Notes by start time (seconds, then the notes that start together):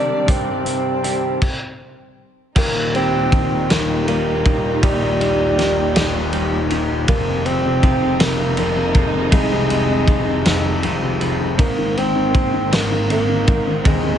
Already playing: C3 D#3 G3 C4 D4 G4 D5
0.26 G2 C3 D#3 C4 D4 G4, kick, closed hi-hat
0.65 C3 C4 D4 G4, closed hi-hat
1.03 D#3 G3 C4 D4 G4, closed hi-hat
1.42 kick, crash
2.56 D#1 D#2 A#2 D#3 G3 A#3 D#4 G4, kick, crash
2.75 A#2
2.93 G3 A#3 C4 D#4 G4, ride
3.13 A#2
3.31 D#3 A#3 D#4 G4, kick, ride
3.51 A#2
3.69 D#1 D#2 D#3 A#3 D#4 G4, snare, ride
3.90 A#2
4.07 D#3 G3 A#3 D#4 G4, ride
4.27 A#2
4.45 D#3 A#3 D#4 G4, kick, ride
4.64 A#2
4.82 A#1 D#3 G3 A#3 D#4 G4, kick, ride
5.03 A#2
5.20 G3 A#3 D#4 G4, ride
5.40 A#2
5.57 D#3 A#3 D#4 G4, snare, ride
5.78 A#2
5.95 D#1 D#2 D#3 A#3 D#4 G4, snare, ride
6.15 A#2
6.33 D#3 G3 A#3 D#4 G4, ride
6.53 A#2
6.70 D#3 A#3 D#4 G4, ride
6.90 A#2
7.08 F1 F2 C3 D#3 G#3 A#3 C4 D#4 F4, kick, ride
7.28 C3
7.45 F2 D#3 G#3 C4 F4, ride
7.66 C3
7.82 F2 D#3 G#3 C4 F4, kick, ride
8.02 C3
8.19 F1 F2 C3 D#3 G#3 A#3 C4 F4, snare, ride
8.39 C3
8.57 F2 D#3 G#3 A#3 C4 F4, ride
8.77 C3
8.93 F2 D#3 G#3 C4 F4, kick, ride
9.15 C3
9.30 C2 F2 C3 D#3 G#3 C4 F4, kick, ride
9.52 C3
9.68 F2 D#3 G#3 C4 F4, ride
9.89 C3
10.06 F2 D#3 G#3 C4 F4, kick, ride
10.27 C3
10.45 F1 F2 C3 D#3 G#3 C4 F4, snare, ride
10.66 C3
10.82 F2 D#3 G#3 C4 F4, ride
11.02 C3
11.20 F2 D#3 G#3 C4 F4, ride
11.40 C3
11.58 G#1 G#2 D#3 G#3 A#3 C4 D#4 A#4, kick, ride
11.78 D#3
11.95 G#2 C4 D#4 A#4, ride
12.15 D#3
12.33 G#2 G#3 C4 D#4 A#4, kick, ride
12.54 D#3
12.71 G#1 G#2 G#3 A#3 C4 D#4 A#4, snare, ride
12.92 D#3
13.09 G#2 G#3 A#3 C4 D#4 A#4, ride
13.29 D#3
13.47 G#2 C4 D#4 A#4, kick, ride
13.67 D#3
13.84 D#1 D#2 G#3 C4 D#4 A#4, kick, ride
14.03 D#3